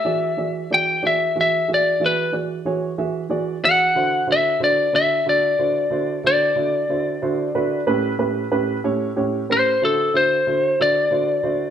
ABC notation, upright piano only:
X:1
M:12/8
L:1/8
Q:3/8=61
K:D
V:1 name="Upright piano"
[E,F^Gd] [E,FGd] [E,FGd] [E,FGd] [E,FGe] [E,FGe] [E,FGe] [E,FGd] [E,FGc] [E,FGe] [E,FGd] [E,FGd] | [D,EF=c] [D,EFc] [D,EFc] [D,EFd] [D,EFA] [D,EFc] [D,EFc] [D,EFc] [D,EFd] [D,EFc] [D,EFc] [D,EFB] | [A,,CGB] [A,,CGB] [A,,CGB] [A,,CGc] [A,,CGc] [A,,CGB] [D,EF=c] [D,EFc] [D,EFc] [D,EFc] [D,EFc] [D,EFc] |]